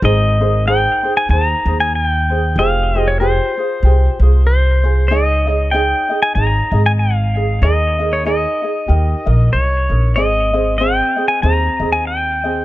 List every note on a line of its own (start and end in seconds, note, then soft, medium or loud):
0.02 0.85 G#1 medium
0.02 0.40 D#4 medium
0.02 0.40 G#4 medium
0.02 0.40 A#4 medium
0.02 0.39 C5 medium
0.02 0.67 D#5 medium
0.41 0.66 D#4 medium
0.41 0.67 G#4 medium
0.41 0.66 A#4 soft
0.41 0.67 C5 medium
0.67 1.04 D#4 medium
0.67 1.03 G#4 medium
0.67 1.03 A#4 medium
0.67 1.02 C5 medium
0.67 1.14 G5 medium
1.03 1.29 D#4 soft
1.03 1.30 G#4 soft
1.03 1.30 C5 soft
1.17 1.30 G#5 medium
1.29 1.53 D#2 medium
1.29 1.67 D#4 medium
1.29 1.66 G#4 medium
1.29 1.66 A#4 soft
1.29 1.65 C5 medium
1.29 1.48 A5 medium
1.48 1.80 A#5 medium
1.66 2.57 D#2 medium
1.66 2.31 D#4 soft
1.66 2.31 G#4 soft
1.66 2.30 C5 soft
1.80 1.92 G#5 medium
1.95 2.06 G#5 medium
2.06 2.59 G5 medium
2.30 2.57 D#4 soft
2.30 2.57 G#4 soft
2.30 2.56 C5 medium
2.56 3.38 F1 medium
2.56 2.94 F4 medium
2.56 2.94 G4 medium
2.56 2.94 G#4 medium
2.56 2.94 C5 medium
2.56 3.09 F5 medium
2.95 3.20 F4 soft
2.95 3.19 G4 medium
2.95 3.20 G#4 medium
2.95 3.20 C5 medium
3.08 3.20 C#5 medium
3.20 3.57 F4 medium
3.20 3.57 G4 medium
3.20 3.57 G#4 medium
3.20 4.45 C5 medium
3.20 3.56 C5 medium
3.58 3.84 F4 soft
3.58 3.84 G#4 soft
3.58 3.83 C5 soft
3.83 4.07 C2 medium
3.83 4.20 F4 soft
3.83 4.20 G4 medium
3.83 4.21 G#4 medium
3.83 4.20 C5 medium
4.20 5.10 C2 medium
4.20 4.84 F4 soft
4.20 4.85 G#4 medium
4.20 4.82 C5 medium
4.47 5.12 C5 medium
4.84 5.11 F4 soft
4.84 5.10 G#4 soft
4.84 5.10 C5 medium
5.08 5.92 C#2 medium
5.08 5.46 D#4 medium
5.08 5.46 G#4 medium
5.08 5.47 C#5 medium
5.08 5.74 D#5 medium
5.08 5.46 D#5 medium
5.47 5.73 D#4 medium
5.47 5.73 G#4 medium
5.47 5.72 C#5 medium
5.47 5.73 D#5 medium
5.71 6.10 D#4 medium
5.71 6.10 G#4 medium
5.71 6.10 C#5 medium
5.71 6.08 D#5 medium
5.71 6.22 G5 medium
6.10 6.35 D#4 soft
6.10 6.36 G#4 soft
6.10 6.36 D#5 soft
6.22 6.35 G#5 medium
6.35 6.59 G#1 medium
6.35 6.73 D#4 medium
6.35 6.72 G#4 medium
6.35 6.72 C#5 medium
6.35 6.71 D#5 medium
6.35 6.82 A#5 medium
6.72 7.63 G#1 medium
6.72 7.37 D#4 soft
6.72 7.35 G#4 soft
6.72 7.35 D#5 soft
6.86 6.91 G#5 medium
6.99 7.65 F5 medium
7.35 7.63 D#4 soft
7.35 7.63 G#4 soft
7.35 7.62 D#5 soft
7.62 8.45 D#2 medium
7.62 7.99 D#4 medium
7.62 7.99 G#4 medium
7.62 7.99 A#4 medium
7.62 8.14 D#5 medium
7.62 7.98 D#5 medium
7.99 8.24 D#4 soft
7.99 8.25 G#4 medium
7.99 8.24 A#4 medium
7.99 8.25 D#5 medium
8.13 8.26 C#5 medium
8.25 8.63 D#4 medium
8.25 8.62 G#4 medium
8.25 8.62 A#4 medium
8.25 8.61 D#5 medium
8.25 9.52 D#5 medium
8.63 8.87 D#4 soft
8.63 8.89 G#4 soft
8.63 8.89 D#5 soft
8.88 9.13 D#2 medium
8.88 9.26 D#4 medium
8.88 9.25 G4 medium
8.88 9.25 A#4 medium
8.88 9.25 D#5 medium
9.26 9.53 A#1 medium
9.26 9.91 D#4 soft
9.26 9.89 A#4 medium
9.26 9.89 D#5 medium
9.53 9.87 C2 medium
9.53 10.18 C#5 medium
9.89 10.17 A#1 medium
9.89 10.16 D#4 soft
9.89 10.17 A#4 soft
9.89 10.16 D#5 soft
10.16 11.00 G#1 medium
10.16 10.52 C4 medium
10.16 10.52 G#4 medium
10.16 10.53 C5 medium
10.16 10.81 D#5 medium
10.16 10.52 D#5 medium
10.53 10.79 C4 medium
10.53 10.79 G#4 medium
10.53 10.78 C5 soft
10.53 10.80 D#5 medium
10.78 11.17 C4 medium
10.78 11.16 G#4 medium
10.78 11.17 C5 medium
10.78 11.15 D#5 medium
10.78 11.28 G5 medium
11.16 11.42 C4 soft
11.16 11.43 G#4 soft
11.16 11.43 D#5 soft
11.28 11.42 G#5 medium
11.42 11.67 D#2 medium
11.42 11.80 C4 medium
11.42 11.80 G#4 medium
11.42 11.80 C5 soft
11.42 11.79 D#5 medium
11.42 11.92 A#5 medium
11.80 12.65 D#2 medium
11.80 12.44 C4 soft
11.80 12.45 G#4 soft
11.80 12.43 D#5 soft
11.93 12.07 G#5 medium
12.07 12.65 G5 medium
12.44 12.65 C4 soft
12.44 12.65 G#4 soft
12.44 12.65 D#5 soft